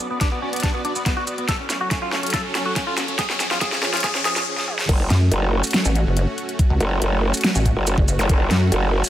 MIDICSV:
0, 0, Header, 1, 8, 480
1, 0, Start_track
1, 0, Tempo, 425532
1, 1675, Time_signature, 4, 2, 24, 8
1, 10254, End_track
2, 0, Start_track
2, 0, Title_t, "Clean electric guitar"
2, 0, Program_c, 0, 27
2, 119, Note_on_c, 0, 59, 66
2, 193, Note_off_c, 0, 59, 0
2, 236, Note_on_c, 0, 62, 89
2, 313, Note_off_c, 0, 62, 0
2, 358, Note_on_c, 0, 59, 67
2, 432, Note_off_c, 0, 59, 0
2, 475, Note_on_c, 0, 61, 87
2, 553, Note_off_c, 0, 61, 0
2, 598, Note_on_c, 0, 59, 63
2, 672, Note_off_c, 0, 59, 0
2, 715, Note_on_c, 0, 62, 82
2, 793, Note_off_c, 0, 62, 0
2, 838, Note_on_c, 0, 59, 66
2, 912, Note_off_c, 0, 59, 0
2, 955, Note_on_c, 0, 62, 90
2, 1033, Note_off_c, 0, 62, 0
2, 1078, Note_on_c, 0, 59, 64
2, 1152, Note_off_c, 0, 59, 0
2, 1195, Note_on_c, 0, 59, 63
2, 1273, Note_off_c, 0, 59, 0
2, 1317, Note_on_c, 0, 66, 86
2, 1392, Note_off_c, 0, 66, 0
2, 1435, Note_on_c, 0, 59, 67
2, 1513, Note_off_c, 0, 59, 0
2, 1558, Note_on_c, 0, 59, 66
2, 1632, Note_off_c, 0, 59, 0
2, 1675, Note_on_c, 0, 69, 97
2, 1753, Note_off_c, 0, 69, 0
2, 1799, Note_on_c, 0, 61, 58
2, 1873, Note_off_c, 0, 61, 0
2, 1916, Note_on_c, 0, 61, 57
2, 1994, Note_off_c, 0, 61, 0
2, 2039, Note_on_c, 0, 66, 82
2, 2113, Note_off_c, 0, 66, 0
2, 2156, Note_on_c, 0, 61, 59
2, 2233, Note_off_c, 0, 61, 0
2, 2277, Note_on_c, 0, 65, 90
2, 2352, Note_off_c, 0, 65, 0
2, 2395, Note_on_c, 0, 61, 59
2, 2473, Note_off_c, 0, 61, 0
2, 2517, Note_on_c, 0, 61, 58
2, 2592, Note_off_c, 0, 61, 0
2, 2635, Note_on_c, 0, 69, 90
2, 2713, Note_off_c, 0, 69, 0
2, 2758, Note_on_c, 0, 61, 59
2, 2832, Note_off_c, 0, 61, 0
2, 2875, Note_on_c, 0, 61, 62
2, 2953, Note_off_c, 0, 61, 0
2, 2997, Note_on_c, 0, 66, 82
2, 3072, Note_off_c, 0, 66, 0
2, 3114, Note_on_c, 0, 61, 59
2, 3192, Note_off_c, 0, 61, 0
2, 3236, Note_on_c, 0, 65, 86
2, 3311, Note_off_c, 0, 65, 0
2, 3354, Note_on_c, 0, 61, 60
2, 3433, Note_off_c, 0, 61, 0
2, 3478, Note_on_c, 0, 61, 64
2, 3552, Note_off_c, 0, 61, 0
2, 3594, Note_on_c, 0, 68, 101
2, 3672, Note_off_c, 0, 68, 0
2, 3717, Note_on_c, 0, 61, 64
2, 3792, Note_off_c, 0, 61, 0
2, 3835, Note_on_c, 0, 61, 65
2, 3913, Note_off_c, 0, 61, 0
2, 3957, Note_on_c, 0, 65, 91
2, 4032, Note_off_c, 0, 65, 0
2, 4075, Note_on_c, 0, 68, 102
2, 4153, Note_off_c, 0, 68, 0
2, 4198, Note_on_c, 0, 61, 64
2, 4272, Note_off_c, 0, 61, 0
2, 4315, Note_on_c, 0, 61, 67
2, 4393, Note_off_c, 0, 61, 0
2, 4437, Note_on_c, 0, 65, 90
2, 4512, Note_off_c, 0, 65, 0
2, 4555, Note_on_c, 0, 68, 101
2, 4633, Note_off_c, 0, 68, 0
2, 4678, Note_on_c, 0, 61, 66
2, 4752, Note_off_c, 0, 61, 0
2, 4796, Note_on_c, 0, 68, 101
2, 4873, Note_off_c, 0, 68, 0
2, 4919, Note_on_c, 0, 61, 65
2, 4993, Note_off_c, 0, 61, 0
2, 10254, End_track
3, 0, Start_track
3, 0, Title_t, "Supersaw synth"
3, 0, Program_c, 1, 81
3, 0, Note_on_c, 1, 59, 84
3, 0, Note_on_c, 1, 66, 75
3, 0, Note_on_c, 1, 74, 92
3, 1656, Note_off_c, 1, 59, 0
3, 1656, Note_off_c, 1, 66, 0
3, 1656, Note_off_c, 1, 74, 0
3, 1675, Note_on_c, 1, 61, 76
3, 1675, Note_on_c, 1, 69, 95
3, 1676, Note_on_c, 1, 54, 82
3, 3576, Note_off_c, 1, 54, 0
3, 3576, Note_off_c, 1, 61, 0
3, 3576, Note_off_c, 1, 69, 0
3, 3595, Note_on_c, 1, 53, 83
3, 3595, Note_on_c, 1, 61, 75
3, 3595, Note_on_c, 1, 68, 93
3, 5496, Note_off_c, 1, 53, 0
3, 5496, Note_off_c, 1, 61, 0
3, 5496, Note_off_c, 1, 68, 0
3, 5514, Note_on_c, 1, 66, 95
3, 5515, Note_on_c, 1, 57, 86
3, 5515, Note_on_c, 1, 61, 78
3, 10254, Note_off_c, 1, 57, 0
3, 10254, Note_off_c, 1, 61, 0
3, 10254, Note_off_c, 1, 66, 0
3, 10254, End_track
4, 0, Start_track
4, 0, Title_t, "Wobble bass"
4, 0, Program_c, 2, 39
4, 5756, Note_on_c, 2, 42, 100
4, 5977, Note_off_c, 2, 42, 0
4, 6599, Note_on_c, 2, 33, 95
4, 6819, Note_off_c, 2, 33, 0
4, 6839, Note_on_c, 2, 30, 98
4, 7059, Note_off_c, 2, 30, 0
4, 7559, Note_on_c, 2, 37, 99
4, 7657, Note_off_c, 2, 37, 0
4, 8518, Note_on_c, 2, 33, 96
4, 8738, Note_off_c, 2, 33, 0
4, 8998, Note_on_c, 2, 30, 102
4, 9219, Note_off_c, 2, 30, 0
4, 9595, Note_on_c, 2, 42, 96
4, 9817, Note_off_c, 2, 42, 0
4, 10254, End_track
5, 0, Start_track
5, 0, Title_t, "Wobble bass"
5, 0, Program_c, 3, 39
5, 5516, Note_on_c, 3, 30, 99
5, 5737, Note_off_c, 3, 30, 0
5, 5995, Note_on_c, 3, 30, 96
5, 6339, Note_off_c, 3, 30, 0
5, 7676, Note_on_c, 3, 30, 98
5, 7897, Note_off_c, 3, 30, 0
5, 7915, Note_on_c, 3, 30, 98
5, 8259, Note_off_c, 3, 30, 0
5, 8759, Note_on_c, 3, 30, 99
5, 8979, Note_off_c, 3, 30, 0
5, 9238, Note_on_c, 3, 30, 98
5, 9337, Note_off_c, 3, 30, 0
5, 9356, Note_on_c, 3, 30, 98
5, 9577, Note_off_c, 3, 30, 0
5, 9835, Note_on_c, 3, 30, 100
5, 10179, Note_off_c, 3, 30, 0
5, 10254, End_track
6, 0, Start_track
6, 0, Title_t, "Riser"
6, 0, Program_c, 4, 103
6, 0, Note_on_c, 4, 60, 76
6, 5036, Note_off_c, 4, 60, 0
6, 10254, End_track
7, 0, Start_track
7, 0, Title_t, "Zap"
7, 0, Program_c, 5, 103
7, 9238, Note_on_c, 5, 60, 63
7, 9355, Note_off_c, 5, 60, 0
7, 10254, End_track
8, 0, Start_track
8, 0, Title_t, "Drums"
8, 235, Note_on_c, 9, 36, 91
8, 235, Note_on_c, 9, 38, 59
8, 235, Note_on_c, 9, 42, 80
8, 348, Note_off_c, 9, 36, 0
8, 348, Note_off_c, 9, 38, 0
8, 348, Note_off_c, 9, 42, 0
8, 598, Note_on_c, 9, 42, 51
8, 635, Note_off_c, 9, 42, 0
8, 635, Note_on_c, 9, 42, 66
8, 676, Note_off_c, 9, 42, 0
8, 676, Note_on_c, 9, 42, 85
8, 715, Note_off_c, 9, 42, 0
8, 715, Note_on_c, 9, 36, 95
8, 715, Note_on_c, 9, 38, 66
8, 715, Note_on_c, 9, 42, 83
8, 828, Note_off_c, 9, 36, 0
8, 828, Note_off_c, 9, 38, 0
8, 828, Note_off_c, 9, 42, 0
8, 955, Note_on_c, 9, 42, 53
8, 1068, Note_off_c, 9, 42, 0
8, 1078, Note_on_c, 9, 82, 50
8, 1191, Note_off_c, 9, 82, 0
8, 1195, Note_on_c, 9, 36, 101
8, 1196, Note_on_c, 9, 38, 69
8, 1196, Note_on_c, 9, 42, 81
8, 1308, Note_off_c, 9, 36, 0
8, 1308, Note_off_c, 9, 38, 0
8, 1308, Note_off_c, 9, 42, 0
8, 1435, Note_on_c, 9, 42, 55
8, 1435, Note_on_c, 9, 82, 48
8, 1548, Note_off_c, 9, 42, 0
8, 1548, Note_off_c, 9, 82, 0
8, 1558, Note_on_c, 9, 42, 38
8, 1671, Note_off_c, 9, 42, 0
8, 1675, Note_on_c, 9, 36, 93
8, 1675, Note_on_c, 9, 38, 69
8, 1675, Note_on_c, 9, 42, 81
8, 1788, Note_off_c, 9, 36, 0
8, 1788, Note_off_c, 9, 38, 0
8, 1788, Note_off_c, 9, 42, 0
8, 1915, Note_on_c, 9, 38, 72
8, 1915, Note_on_c, 9, 42, 52
8, 1915, Note_on_c, 9, 82, 52
8, 2028, Note_off_c, 9, 38, 0
8, 2028, Note_off_c, 9, 42, 0
8, 2028, Note_off_c, 9, 82, 0
8, 2155, Note_on_c, 9, 36, 97
8, 2155, Note_on_c, 9, 38, 75
8, 2155, Note_on_c, 9, 42, 78
8, 2268, Note_off_c, 9, 36, 0
8, 2268, Note_off_c, 9, 38, 0
8, 2268, Note_off_c, 9, 42, 0
8, 2395, Note_on_c, 9, 38, 80
8, 2508, Note_off_c, 9, 38, 0
8, 2518, Note_on_c, 9, 42, 49
8, 2555, Note_off_c, 9, 42, 0
8, 2555, Note_on_c, 9, 42, 69
8, 2596, Note_off_c, 9, 42, 0
8, 2596, Note_on_c, 9, 42, 82
8, 2635, Note_off_c, 9, 42, 0
8, 2635, Note_on_c, 9, 36, 100
8, 2635, Note_on_c, 9, 38, 83
8, 2635, Note_on_c, 9, 42, 83
8, 2748, Note_off_c, 9, 36, 0
8, 2748, Note_off_c, 9, 38, 0
8, 2748, Note_off_c, 9, 42, 0
8, 2876, Note_on_c, 9, 38, 88
8, 2876, Note_on_c, 9, 42, 55
8, 2988, Note_off_c, 9, 38, 0
8, 2988, Note_off_c, 9, 42, 0
8, 3115, Note_on_c, 9, 36, 105
8, 3115, Note_on_c, 9, 38, 83
8, 3115, Note_on_c, 9, 42, 82
8, 3228, Note_off_c, 9, 36, 0
8, 3228, Note_off_c, 9, 38, 0
8, 3228, Note_off_c, 9, 42, 0
8, 3356, Note_on_c, 9, 38, 88
8, 3356, Note_on_c, 9, 42, 52
8, 3356, Note_on_c, 9, 82, 50
8, 3468, Note_off_c, 9, 38, 0
8, 3468, Note_off_c, 9, 42, 0
8, 3468, Note_off_c, 9, 82, 0
8, 3478, Note_on_c, 9, 42, 37
8, 3591, Note_off_c, 9, 42, 0
8, 3595, Note_on_c, 9, 36, 98
8, 3595, Note_on_c, 9, 38, 89
8, 3595, Note_on_c, 9, 42, 79
8, 3708, Note_off_c, 9, 36, 0
8, 3708, Note_off_c, 9, 38, 0
8, 3708, Note_off_c, 9, 42, 0
8, 3718, Note_on_c, 9, 38, 82
8, 3831, Note_off_c, 9, 38, 0
8, 3835, Note_on_c, 9, 38, 93
8, 3835, Note_on_c, 9, 42, 53
8, 3835, Note_on_c, 9, 82, 54
8, 3948, Note_off_c, 9, 38, 0
8, 3948, Note_off_c, 9, 42, 0
8, 3948, Note_off_c, 9, 82, 0
8, 3959, Note_on_c, 9, 38, 87
8, 4071, Note_off_c, 9, 38, 0
8, 4075, Note_on_c, 9, 36, 93
8, 4076, Note_on_c, 9, 38, 94
8, 4076, Note_on_c, 9, 42, 75
8, 4188, Note_off_c, 9, 36, 0
8, 4189, Note_off_c, 9, 38, 0
8, 4189, Note_off_c, 9, 42, 0
8, 4199, Note_on_c, 9, 38, 83
8, 4311, Note_off_c, 9, 38, 0
8, 4316, Note_on_c, 9, 38, 97
8, 4428, Note_off_c, 9, 38, 0
8, 4439, Note_on_c, 9, 38, 87
8, 4439, Note_on_c, 9, 42, 49
8, 4476, Note_off_c, 9, 42, 0
8, 4476, Note_on_c, 9, 42, 67
8, 4516, Note_off_c, 9, 42, 0
8, 4516, Note_on_c, 9, 42, 77
8, 4551, Note_off_c, 9, 38, 0
8, 4555, Note_on_c, 9, 36, 102
8, 4556, Note_off_c, 9, 42, 0
8, 4556, Note_on_c, 9, 38, 103
8, 4556, Note_on_c, 9, 42, 81
8, 4668, Note_off_c, 9, 36, 0
8, 4668, Note_off_c, 9, 38, 0
8, 4668, Note_off_c, 9, 42, 0
8, 4679, Note_on_c, 9, 38, 92
8, 4791, Note_off_c, 9, 38, 0
8, 4796, Note_on_c, 9, 38, 102
8, 4796, Note_on_c, 9, 42, 55
8, 4909, Note_off_c, 9, 38, 0
8, 4909, Note_off_c, 9, 42, 0
8, 4918, Note_on_c, 9, 38, 93
8, 4918, Note_on_c, 9, 82, 53
8, 5031, Note_off_c, 9, 38, 0
8, 5031, Note_off_c, 9, 82, 0
8, 5158, Note_on_c, 9, 38, 55
8, 5271, Note_off_c, 9, 38, 0
8, 5276, Note_on_c, 9, 47, 78
8, 5388, Note_off_c, 9, 47, 0
8, 5399, Note_on_c, 9, 38, 82
8, 5512, Note_off_c, 9, 38, 0
8, 5516, Note_on_c, 9, 36, 119
8, 5516, Note_on_c, 9, 42, 85
8, 5516, Note_on_c, 9, 49, 104
8, 5629, Note_off_c, 9, 36, 0
8, 5629, Note_off_c, 9, 42, 0
8, 5629, Note_off_c, 9, 49, 0
8, 5756, Note_on_c, 9, 38, 65
8, 5756, Note_on_c, 9, 42, 57
8, 5869, Note_off_c, 9, 38, 0
8, 5869, Note_off_c, 9, 42, 0
8, 5996, Note_on_c, 9, 42, 79
8, 6109, Note_off_c, 9, 42, 0
8, 6359, Note_on_c, 9, 42, 55
8, 6359, Note_on_c, 9, 82, 81
8, 6396, Note_off_c, 9, 42, 0
8, 6396, Note_on_c, 9, 42, 68
8, 6437, Note_off_c, 9, 42, 0
8, 6437, Note_on_c, 9, 42, 82
8, 6471, Note_off_c, 9, 82, 0
8, 6476, Note_off_c, 9, 42, 0
8, 6476, Note_on_c, 9, 38, 126
8, 6476, Note_on_c, 9, 42, 87
8, 6589, Note_off_c, 9, 38, 0
8, 6589, Note_off_c, 9, 42, 0
8, 6599, Note_on_c, 9, 82, 77
8, 6712, Note_off_c, 9, 82, 0
8, 6716, Note_on_c, 9, 42, 55
8, 6829, Note_off_c, 9, 42, 0
8, 6956, Note_on_c, 9, 42, 82
8, 7069, Note_off_c, 9, 42, 0
8, 7196, Note_on_c, 9, 46, 91
8, 7308, Note_off_c, 9, 46, 0
8, 7319, Note_on_c, 9, 42, 39
8, 7431, Note_off_c, 9, 42, 0
8, 7435, Note_on_c, 9, 36, 127
8, 7436, Note_on_c, 9, 42, 82
8, 7548, Note_off_c, 9, 36, 0
8, 7549, Note_off_c, 9, 42, 0
8, 7676, Note_on_c, 9, 42, 55
8, 7789, Note_off_c, 9, 42, 0
8, 7916, Note_on_c, 9, 42, 80
8, 8029, Note_off_c, 9, 42, 0
8, 8279, Note_on_c, 9, 42, 55
8, 8279, Note_on_c, 9, 82, 77
8, 8316, Note_off_c, 9, 42, 0
8, 8316, Note_on_c, 9, 42, 70
8, 8357, Note_off_c, 9, 42, 0
8, 8357, Note_on_c, 9, 42, 88
8, 8392, Note_off_c, 9, 82, 0
8, 8396, Note_off_c, 9, 42, 0
8, 8396, Note_on_c, 9, 38, 127
8, 8396, Note_on_c, 9, 42, 89
8, 8509, Note_off_c, 9, 38, 0
8, 8509, Note_off_c, 9, 42, 0
8, 8519, Note_on_c, 9, 82, 78
8, 8632, Note_off_c, 9, 82, 0
8, 8635, Note_on_c, 9, 36, 63
8, 8636, Note_on_c, 9, 42, 58
8, 8748, Note_off_c, 9, 36, 0
8, 8749, Note_off_c, 9, 42, 0
8, 8876, Note_on_c, 9, 42, 83
8, 8876, Note_on_c, 9, 82, 80
8, 8989, Note_off_c, 9, 42, 0
8, 8989, Note_off_c, 9, 82, 0
8, 8998, Note_on_c, 9, 36, 116
8, 9111, Note_off_c, 9, 36, 0
8, 9116, Note_on_c, 9, 46, 90
8, 9116, Note_on_c, 9, 82, 75
8, 9229, Note_off_c, 9, 46, 0
8, 9229, Note_off_c, 9, 82, 0
8, 9239, Note_on_c, 9, 42, 39
8, 9352, Note_off_c, 9, 42, 0
8, 9355, Note_on_c, 9, 36, 127
8, 9356, Note_on_c, 9, 42, 82
8, 9468, Note_off_c, 9, 36, 0
8, 9469, Note_off_c, 9, 42, 0
8, 9596, Note_on_c, 9, 38, 67
8, 9596, Note_on_c, 9, 42, 55
8, 9709, Note_off_c, 9, 38, 0
8, 9709, Note_off_c, 9, 42, 0
8, 9836, Note_on_c, 9, 42, 76
8, 9949, Note_off_c, 9, 42, 0
8, 10199, Note_on_c, 9, 42, 52
8, 10199, Note_on_c, 9, 82, 80
8, 10254, Note_off_c, 9, 42, 0
8, 10254, Note_off_c, 9, 82, 0
8, 10254, End_track
0, 0, End_of_file